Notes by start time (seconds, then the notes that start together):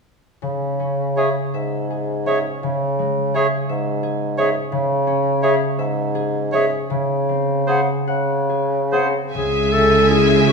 0.42 C#3
0.79 C#4
1.17 G#4 C#5 E5
1.54 G#2 E5
1.90 G#4
2.26 C#4 G#4 C#5 E5
2.63 C#3
2.99 G#3
3.34 G#4 C#5 E5
3.69 G#2 E5
4.03 G#4
4.37 C#4 G#4 C#5 E5
4.72 C#3
5.07 C#4
5.42 G#4 C#5 E5
5.79 G#2 E5
6.15 G#4
6.52 C#4 G#4 C#5 E5
6.90 C#3
7.29 C4
7.67 G#4 C5 F#5
8.07 C#3 F#5
8.49 G#4
8.92 C4 G#4 C5 F#5
9.33 C#2 C#3 G#3 G#4 E5 G#5
9.72 C#4 A4
10.10 E4 G#4
10.47 F#4 G#4